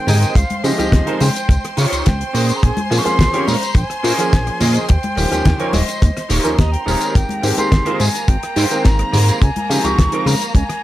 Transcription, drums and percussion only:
0.08 open hi-hat, tambourine, low conga
0.22 closed hi-hat, tambourine
0.35 kick, closed hi-hat, tambourine
0.50 closed hi-hat, high conga
0.64 open hi-hat, tambourine
0.79 closed hi-hat, tambourine, high conga
0.92 kick, snare, closed hi-hat, low conga
1.07 closed hi-hat
1.20 cross-stick, open hi-hat, tambourine, high conga
1.36 closed hi-hat, tambourine
1.49 kick, closed hi-hat, tambourine, high conga
1.65 cross-stick, snare, closed hi-hat
1.77 open hi-hat, tambourine
1.93 closed hi-hat, tambourine
2.06 kick, snare, closed hi-hat, tambourine
2.21 closed hi-hat
2.35 open hi-hat, tambourine
2.49 closed hi-hat, tambourine
2.63 kick, closed hi-hat, tambourine
2.77 closed hi-hat, high conga
2.92 open hi-hat, tambourine
3.06 closed hi-hat, tambourine, high conga
3.19 kick, snare, closed hi-hat, tambourine, low conga
3.34 closed hi-hat
3.48 open hi-hat, tambourine, high conga
3.63 closed hi-hat, tambourine
3.75 kick, closed hi-hat, tambourine
3.90 cross-stick, closed hi-hat
4.04 open hi-hat, tambourine
4.19 closed hi-hat, tambourine
4.33 kick, snare, closed hi-hat, tambourine
4.47 cross-stick, closed hi-hat
4.61 open hi-hat, tambourine, low conga
4.75 closed hi-hat, tambourine
4.89 kick, closed hi-hat
5.03 closed hi-hat, high conga
5.17 open hi-hat, tambourine
5.32 closed hi-hat, tambourine, high conga
5.45 kick, snare, closed hi-hat, low conga
5.60 closed hi-hat
5.73 cross-stick, open hi-hat, tambourine, high conga
5.89 closed hi-hat, tambourine
6.02 kick, closed hi-hat, tambourine, high conga
6.17 cross-stick, snare, closed hi-hat
6.30 open hi-hat, tambourine
6.45 closed hi-hat, tambourine
6.59 kick, snare, closed hi-hat, tambourine
6.74 closed hi-hat
6.88 open hi-hat, tambourine
7.01 closed hi-hat, tambourine
7.15 kick, closed hi-hat, tambourine
7.29 closed hi-hat, high conga
7.43 open hi-hat, tambourine
7.58 closed hi-hat, tambourine, high conga
7.72 kick, snare, closed hi-hat, tambourine, low conga
7.86 closed hi-hat
8.00 open hi-hat, tambourine, high conga
8.15 closed hi-hat, tambourine
8.28 kick, closed hi-hat
8.43 cross-stick, closed hi-hat
8.56 open hi-hat, tambourine
8.70 closed hi-hat, tambourine
8.85 kick, snare, closed hi-hat, tambourine
8.99 cross-stick, closed hi-hat
9.13 open hi-hat, tambourine, low conga
9.28 closed hi-hat, tambourine
9.42 kick, closed hi-hat, tambourine
9.56 closed hi-hat, high conga
9.71 open hi-hat, tambourine
9.84 closed hi-hat, tambourine, high conga
9.99 kick, snare, closed hi-hat, tambourine, low conga
10.12 closed hi-hat
10.27 cross-stick, open hi-hat, tambourine, high conga
10.41 closed hi-hat, tambourine
10.55 kick, closed hi-hat, tambourine, high conga
10.69 cross-stick, snare, closed hi-hat

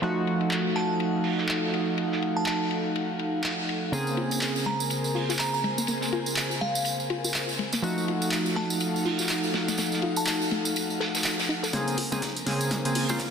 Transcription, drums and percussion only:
0.03 ride
0.27 ride
0.41 ride
0.51 clap
0.76 snare, ride
1.00 ride
1.24 open hi-hat
1.38 snare
1.49 clap, ride
1.74 ride
1.98 ride
2.12 snare
2.22 ride
2.46 clap, ride
2.71 ride
2.96 ride
3.19 ride
3.44 clap, ride
3.69 ride
3.93 ride, tambourine
4.07 tambourine
4.17 ride
4.31 ride, tambourine
4.41 clap, ride, tambourine
4.56 tambourine
4.66 snare, ride
4.80 tambourine
4.90 ride, tambourine
5.04 tambourine
5.16 open hi-hat
5.29 snare, tambourine
5.39 clap, ride, tambourine
5.54 tambourine
5.64 ride
5.78 tambourine
5.87 ride, tambourine
6.01 snare, tambourine
6.12 ride
6.26 tambourine
6.36 clap, ride, tambourine
6.51 tambourine
6.61 ride
6.75 tambourine
6.85 ride, tambourine
7.00 tambourine
7.10 ride
7.24 tambourine
7.34 clap, ride, tambourine
7.49 tambourine
7.59 ride
7.73 snare, tambourine
7.83 ride, tambourine
7.98 tambourine
8.08 ride
8.22 ride, tambourine
8.31 clap, ride, tambourine
8.46 tambourine
8.56 snare, ride
8.70 tambourine
8.80 ride, tambourine
8.96 tambourine
9.05 open hi-hat
9.19 snare, tambourine
9.29 clap, ride, tambourine
9.44 tambourine
9.54 snare, ride
9.68 snare, ride, tambourine
9.78 snare, ride, tambourine
9.92 snare, tambourine
10.02 ride
10.16 tambourine
10.27 clap, ride, tambourine
10.42 tambourine
10.51 ride
10.65 tambourine
10.76 ride, tambourine
10.90 tambourine
11.01 snare, ride
11.15 snare, ride, tambourine
11.24 snare, clap, ride, tambourine
11.39 snare, ride, tambourine
11.50 ride
11.63 snare, tambourine
11.73 kick, snare, closed hi-hat, ride, tambourine
11.87 closed hi-hat, tambourine
11.98 open hi-hat, ride
12.12 snare, ride, tambourine
12.22 kick, snare, closed hi-hat, ride, tambourine
12.37 closed hi-hat, tambourine
12.46 snare, open hi-hat, ride
12.61 closed hi-hat, tambourine
12.71 kick, snare, closed hi-hat, ride, tambourine
12.85 closed hi-hat, tambourine
12.95 open hi-hat
13.09 snare, closed hi-hat, tambourine
13.19 kick, snare, closed hi-hat, ride, tambourine

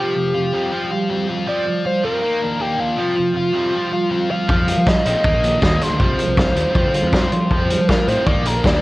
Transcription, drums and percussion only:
4.49 kick
4.68 closed hi-hat
4.87 kick, snare
5.05 closed hi-hat
5.24 kick
5.44 closed hi-hat
5.62 kick, snare
5.81 snare, closed hi-hat
6.00 kick
6.19 closed hi-hat
6.38 kick, snare
6.57 closed hi-hat
6.75 kick
6.94 closed hi-hat
7.13 kick, snare
7.32 closed hi-hat
7.51 kick
7.70 closed hi-hat
7.89 kick, snare
8.08 closed hi-hat
8.26 kick
8.45 closed hi-hat
8.64 kick, snare

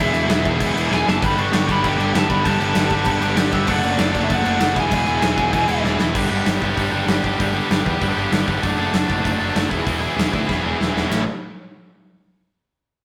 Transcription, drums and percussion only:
0.14 crash
0.29 snare, crash
0.45 kick, crash
0.60 kick, crash
0.77 crash
0.92 snare
1.08 snare
1.22 kick, crash
1.38 crash
1.53 snare, crash
1.69 kick, crash
1.84 kick, crash
2.00 crash
2.15 snare, crash
2.30 kick, crash
2.45 kick, crash
2.61 crash
2.75 snare, crash
2.90 kick, crash
3.05 kick, crash
3.22 crash
3.37 snare, crash
3.52 kick, crash
3.67 kick, crash
3.83 crash
3.98 snare, crash
4.15 kick, crash
4.30 kick, crash
4.45 crash
4.60 snare, crash
4.76 kick, crash
4.91 kick, crash
5.07 crash
5.22 snare, crash
5.38 kick, crash
5.53 kick, crash
5.68 crash
5.84 snare
5.99 snare
6.15 kick, crash
6.46 snare, open hi-hat
6.62 kick
6.77 kick, open hi-hat
7.08 snare, open hi-hat
7.24 kick
7.40 kick, open hi-hat
7.71 snare, open hi-hat
7.86 kick
8.01 kick, open hi-hat
8.32 snare, open hi-hat
8.48 kick
8.63 kick, open hi-hat
8.93 snare, open hi-hat
9.10 kick
9.25 kick, open hi-hat
9.56 snare, open hi-hat
9.71 kick
9.87 kick, open hi-hat
10.19 snare, open hi-hat
10.33 kick
10.49 kick, snare
10.81 snare
10.97 snare
11.11 snare, ride bell

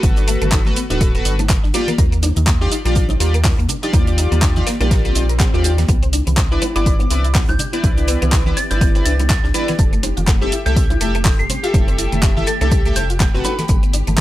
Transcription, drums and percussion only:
0.03 kick, closed hi-hat, high bongo, shaker
0.16 closed hi-hat, shaker
0.28 closed hi-hat, open hi-hat, shaker
0.42 closed hi-hat, high conga, shaker
0.52 kick, snare, clap, closed hi-hat, high bongo, shaker
0.65 high conga, shaker
0.76 closed hi-hat, open hi-hat, shaker
0.90 closed hi-hat, high bongo, shaker
1.01 kick, closed hi-hat, shaker
1.15 closed hi-hat, shaker
1.25 closed hi-hat, open hi-hat, shaker
1.39 closed hi-hat, high bongo, shaker
1.49 kick, snare, clap, closed hi-hat, shaker
1.64 snare, shaker
1.74 closed hi-hat, open hi-hat, high bongo, shaker
1.88 snare, closed hi-hat, high conga, shaker
1.98 kick, closed hi-hat, shaker
2.12 closed hi-hat, shaker
2.23 closed hi-hat, open hi-hat, high bongo, shaker
2.36 closed hi-hat, high conga, shaker
2.47 kick, snare, clap, closed hi-hat, shaker
2.62 high bongo, shaker
2.72 closed hi-hat, open hi-hat, shaker
2.85 closed hi-hat, shaker
2.95 kick, closed hi-hat, shaker
3.09 closed hi-hat, high bongo, shaker
3.20 closed hi-hat, open hi-hat, shaker
3.34 closed hi-hat, shaker
3.44 kick, snare, clap, closed hi-hat, open hi-hat, high bongo, shaker
3.59 closed hi-hat, shaker
3.69 closed hi-hat, open hi-hat, low conga, shaker
3.83 closed hi-hat, shaker
3.93 kick, closed hi-hat, high bongo, shaker
4.07 closed hi-hat, shaker
4.18 closed hi-hat, open hi-hat, shaker
4.32 closed hi-hat, high bongo, high conga, shaker
4.42 kick, snare, clap, closed hi-hat, shaker
4.56 closed hi-hat, high conga, shaker
4.67 snare, closed hi-hat, open hi-hat, shaker
4.81 closed hi-hat, high bongo, shaker
4.91 kick, snare, closed hi-hat, shaker
5.05 closed hi-hat, shaker
5.15 closed hi-hat, open hi-hat, high bongo, shaker
5.29 closed hi-hat, shaker
5.40 kick, snare, clap, closed hi-hat, shaker
5.53 snare, shaker
5.64 closed hi-hat, open hi-hat, high bongo, shaker
5.78 snare, closed hi-hat, high conga, shaker
5.88 kick, closed hi-hat, shaker
6.03 closed hi-hat, shaker
6.13 closed hi-hat, open hi-hat, high bongo, shaker
6.27 closed hi-hat, high conga, shaker
6.37 kick, snare, clap, closed hi-hat, shaker
6.52 shaker
6.62 closed hi-hat, open hi-hat, high bongo, shaker
6.76 closed hi-hat, shaker
6.86 kick, closed hi-hat, shaker
6.99 closed hi-hat, high bongo, shaker
7.11 closed hi-hat, open hi-hat, shaker
7.24 closed hi-hat, shaker
7.34 kick, snare, clap, closed hi-hat, open hi-hat, shaker
7.49 closed hi-hat, high bongo, shaker
7.59 closed hi-hat, open hi-hat, low conga, shaker
7.73 closed hi-hat, shaker
7.84 kick, closed hi-hat, high bongo, shaker
7.97 closed hi-hat, shaker
8.08 closed hi-hat, open hi-hat, shaker
8.22 closed hi-hat, high conga, shaker
8.32 kick, snare, clap, closed hi-hat, high bongo, shaker
8.46 high conga, shaker
8.57 closed hi-hat, open hi-hat, shaker
8.71 closed hi-hat, high bongo, shaker
8.81 kick, closed hi-hat, shaker
8.95 closed hi-hat, shaker
9.06 closed hi-hat, open hi-hat, shaker
9.20 closed hi-hat, high bongo, shaker
9.30 kick, snare, clap, closed hi-hat, shaker
9.44 snare, shaker
9.54 closed hi-hat, open hi-hat, high bongo, shaker
9.68 snare, closed hi-hat, high conga, shaker
9.79 kick, closed hi-hat, shaker
9.93 closed hi-hat, shaker
10.03 closed hi-hat, open hi-hat, high bongo, shaker
10.17 closed hi-hat, high conga, shaker
10.27 kick, snare, clap, closed hi-hat, shaker
10.42 high bongo, shaker
10.52 closed hi-hat, open hi-hat, shaker
10.66 closed hi-hat, shaker
10.76 kick, closed hi-hat, shaker
10.90 closed hi-hat, high bongo, shaker
11.01 closed hi-hat, open hi-hat, shaker
11.15 closed hi-hat, shaker
11.25 kick, snare, clap, closed hi-hat, open hi-hat, high bongo, shaker
11.39 closed hi-hat, shaker
11.50 closed hi-hat, open hi-hat, low conga, shaker
11.64 closed hi-hat, shaker
11.74 kick, closed hi-hat, high bongo, shaker
11.88 closed hi-hat, shaker
11.98 closed hi-hat, open hi-hat, shaker
12.12 closed hi-hat, high bongo, high conga, shaker
12.22 kick, snare, clap, closed hi-hat, shaker
12.37 high conga, shaker
12.47 closed hi-hat, open hi-hat, shaker
12.61 closed hi-hat, high bongo, shaker
12.71 kick, closed hi-hat, shaker
12.86 closed hi-hat, shaker
12.96 closed hi-hat, open hi-hat, high bongo, shaker
13.10 closed hi-hat, shaker
13.20 kick, snare, clap, closed hi-hat, shaker
13.34 snare, shaker
13.44 closed hi-hat, open hi-hat, high bongo, shaker
13.59 snare, closed hi-hat, high conga, shaker
13.68 kick, closed hi-hat, shaker
13.83 closed hi-hat, shaker
13.94 closed hi-hat, open hi-hat, high bongo, shaker
14.07 closed hi-hat, high conga, shaker
14.18 clap, closed hi-hat

